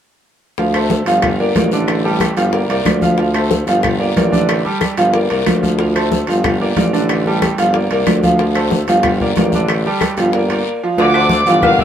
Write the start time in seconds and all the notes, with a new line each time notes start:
0.58 D2 F3 F4 F5, high bongo, high conga, long guiro
0.74 A3 A4 C5, high bongo, high conga, high timbale, claves
0.90 high bongo, high conga, low timbale, short guiro
1.05 G1 F3 F4 F5, high bongo, high conga, high timbale, short guiro
1.22 high bongo, high conga, low conga, high timbale, long guiro, claves
1.39 A#3 A#4 D5, high conga
1.55 A1 A#3 A#4 D5, high bongo, low bongo, high conga, high timbale, low timbale, short guiro
1.72 D3 D4 D5, high bongo, short guiro
1.88 high bongo, high conga, high timbale, long guiro, claves
2.04 G3 G4 A4, high bongo, high conga
2.20 high bongo, high conga, high timbale, low timbale, short guiro, claves
2.37 G1 F3 F4 F5, high bongo, high conga, high timbale, short guiro
2.52 A#3 A#4 D5, high bongo, high conga, long guiro
2.69 C2 A#3 A#4 D5, high conga, high timbale
2.85 D2, high bongo, low bongo, high conga, high timbale, low timbale, short guiro, claves
3.02 F3 F4 F5, high bongo, high conga, short guiro
3.18 F3 F4 F5, high bongo, high conga, long guiro
3.34 A3 A4 C5, high bongo, high conga, high timbale, claves
3.51 high bongo, high conga, low timbale, short guiro
3.66 G1 F3 F4 F5, high bongo, high conga, high timbale, short guiro
3.83 high bongo, high conga, low conga, high timbale, long guiro, claves
4.00 A#3 A#4 D5, high conga
4.16 A1 A#3 A#4 D5, high bongo, low bongo, high conga, high timbale, low timbale, short guiro
4.32 D3 D4 D5, high bongo, high conga, short guiro
4.49 high bongo, high conga, high timbale, long guiro, claves
4.65 G3 G4 A4, high bongo, high conga
4.81 high bongo, high conga, high timbale, low timbale, short guiro, claves
4.97 G1 F3 F4 F5, high bongo, high conga, high timbale, short guiro
5.14 A#3 A#4 D5, high bongo, high conga, long guiro
5.30 C2 A#3 A#4 D5, high conga, high timbale
5.46 D2, high bongo, low bongo, high conga, high timbale, low timbale, short guiro, claves
5.62 F3 F4 F5, high bongo, high conga, short guiro
5.79 F3 F4 F5, high bongo, high conga, long guiro
5.95 A3 A4 C5, high bongo, high conga, high timbale, claves
6.12 high bongo, high conga, low timbale, short guiro
6.27 G1 F3 F4 F5, high bongo, high conga, high timbale, short guiro
6.44 high bongo, high conga, low conga, high timbale, long guiro, claves
6.61 A#3 A#4 D5, high conga
6.76 A1 A#3 A#4 D5, high bongo, low bongo, high conga, high timbale, low timbale, short guiro
6.93 D3 D4 D5, high bongo, short guiro
7.09 high bongo, high conga, high timbale, long guiro, claves
7.26 G3 G4 A4, high bongo, high conga
7.42 high bongo, high conga, high timbale, low timbale, short guiro, claves
7.58 G1 F3 F4 F5, high bongo, high conga, high timbale, short guiro
7.74 A#3 A#4 D5, high bongo, high conga, long guiro
7.91 C2 A#3 A#4 D5, high conga, high timbale
8.06 D2, high bongo, low bongo, high conga, high timbale, low timbale, short guiro, claves
8.23 F3 F4 F5, high bongo, high conga, short guiro
8.39 F3 F4 F5, high bongo, high conga, long guiro
8.55 A3 A4 C5, high bongo, high conga, high timbale, claves
8.71 high bongo, high conga, low timbale, short guiro
8.87 G1 F3 F4 F5, high bongo, high conga, high timbale, short guiro
9.03 high bongo, high conga, low conga, high timbale, long guiro, claves
9.21 A#3 A#4 D5, high conga, low conga
9.36 A1 A#3 A#4 D5, high bongo, low bongo, high conga, high timbale, low timbale, short guiro
9.52 D3 D4 D5, high bongo, high conga, short guiro
9.68 high bongo, high conga, high timbale, long guiro, claves
9.85 G3 G4 A4, high bongo, high conga
10.01 high bongo, high conga, high timbale, low timbale, short guiro, claves
10.17 G1 F3 F4 F5, high bongo, high conga, high timbale, short guiro
10.33 A#3 A#4 D5, high bongo, high conga, long guiro
10.49 A#3 A#4 D5, high conga, high timbale
10.83 F3 F4 F5
10.97 D2 D3 F3 F4 D5 F5 D6, cowbell, high conga, low agogo, long guiro
11.14 A3 A4 C5, high conga, low agogo, claves
11.29 cowbell, high conga, low timbale, low agogo, short guiro
11.46 G1 E3 F3 F4 F5, cowbell, high conga, short guiro
11.62 A#3 A#4 D5 F5, cowbell, high conga, low conga, low agogo, long guiro, claves
11.79 A#3 A#4 D5 E5 E6, high conga, low conga, low agogo